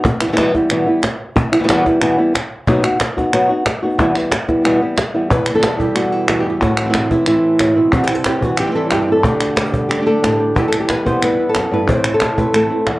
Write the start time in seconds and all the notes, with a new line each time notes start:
0.05 muted nylon-string guitar stroke, cajon bass
0.21 E3 G3 B3 E4, clap
0.28 B2 E3 G3 B3 E4
0.32 B2 E3 G3 B3 E4
0.37 E2 B2 E3 G3 B3 E4, cajon slap, clap
0.54 E3 G3 B3 E4, cajon bass, cajon slap
0.70 E2 B2 E3 G3 B3 E4, clap
0.86 E3 G3 B3 E4
1.03 muted nylon-string guitar stroke, cajon slap, clap
1.36 muted nylon-string guitar stroke, cajon bass
1.52 E3 G3 B3 E4, clap
1.59 B2 E3 G3 B3 E4
1.64 B2 E3 G3 B3 E4
1.68 E2 B2 E3 G3 B3 E4, cajon slap, clap
1.85 E3 G3 B3 E4, cajon bass, cajon slap
2.01 E2 B2 E3 G3 B3 E4, clap
2.18 E3 G3 B3 E4
2.34 muted nylon-string guitar stroke, cajon slap, clap
2.68 B2 F#3 B3 D#4 F#4, cajon bass
2.84 B3 D#4 F#4, clap
3.00 muted nylon-string guitar stroke, cajon slap, clap
3.17 B3 D#4 F#4, cajon bass, cajon slap
3.33 B2 F#3 B3 D#4 F#4, clap
3.49 B3 D#4 F#4
3.65 muted nylon-string guitar stroke, cajon slap, clap
3.83 B3 D#4 F#4
3.98 E2 B2 E3 G3 B3 E4, cajon bass, cajon slap
4.15 E3 G3 B3 E4, clap
4.32 muted nylon-string guitar stroke, cajon slap, clap
4.48 E3 G3 B3 E4, cajon bass, cajon slap
4.64 E2 B2 E3 G3 B3 E4, clap
4.81 E3 G3 B3 E4
4.97 muted nylon-string guitar stroke, cajon slap, clap
5.14 E3 G3 B3 E4
5.30 E2 B4, muted nylon-string guitar stroke, cajon bass
5.46 B2 E3 G3, clap
5.50 B2 B3 E4
5.54 B2 E3 G3 B3 E4 A4
5.59 E3 G3 B3 E4
5.63 E2 B2 E3 G3 B3 E4, cajon slap, clap
5.79 E3 G3 B3 E4 G4, cajon bass
5.95 E2 B2 E3 G3 B3 E4 F#4, clap
6.12 E4
6.28 E2 F#4, cajon slap, clap
6.40 G4
6.45 E3 G3 B3 E4
6.50 G4
6.61 A2 F#4, muted nylon-string guitar stroke, cajon bass, cajon slap
6.77 E3 A3, clap
6.81 E3 C4 E4
6.85 A3 C4 E4
6.89 E3 A3 C4 E4
6.94 A2 E3 A3 C4 E4, cajon slap, clap
7.10 E3 A3 C4 E4, cajon bass
7.26 A2 E3 A3 C4 E4, clap
7.59 A2, cajon slap, clap
7.76 B2 A3 C4 E4, cajon slap
7.92 C3 E3 G3 C4 E4 F#4, cajon bass
8.04 G4
8.08 G3 C4 E4, clap
8.15 A4
8.24 G3 C4 E4 G4, cajon slap, clap
8.41 E3 F#4, cajon bass
8.57 G4, muted nylon-string guitar stroke, clap
8.61 E3 G3 C4 E4
8.66 E3 G3 C4 E4
8.70 E3 G3 C4 E4
8.75 C3 E3 G3 C4 E4 A4
8.91 G2 E3 G3 C4 E4 G4, cajon slap, clap
9.02 G4
9.07 G3 C4 E4
9.12 A4
9.23 D3 A3 D4 G4, cajon bass
9.40 A3 D4 F#4 G4, clap
9.56 A3 D4 G4, cajon slap, clap
9.65 A4
9.72 G3 B3, cajon bass
9.89 G4, muted nylon-string guitar stroke, clap
9.97 D3 A3 D4 G4
10.01 D3 A3 D4 G4
10.06 D3 A3 D4 G4 A4
10.22 A2 D3 A3 D4 G4, cajon slap, clap
10.39 A3 D4 G4 A4, cajon slap
10.55 E2 B2 E3 G3 B3 E4 G4, cajon bass
10.68 E4 A4
10.73 E3 G3 B3, clap
10.80 G4
10.89 B4, muted nylon-string guitar stroke, cajon slap, clap
11.05 E3 G3 B3 E4 C5, cajon bass
11.22 E2 B2 E3 G3 B3 E4 B4, clap
11.39 E3 G3 B3 E4
11.49 A4
11.55 F#2, muted nylon-string guitar stroke, cajon slap, clap
11.71 G2 E3 G3 B3 E4 B4, cajon slap
11.87 A2 E3 A3 C4 E4 C5, cajon bass
12.04 A3 C4 E4, clap
12.14 A4
12.20 muted nylon-string guitar stroke, cajon slap, clap
12.37 A3 C4 E4 B4, cajon bass
12.54 A2 E3 A3 C4 E4 A4, clap
12.70 A3 C4 E4
12.87 E2 A4, muted nylon-string guitar stroke, cajon slap, clap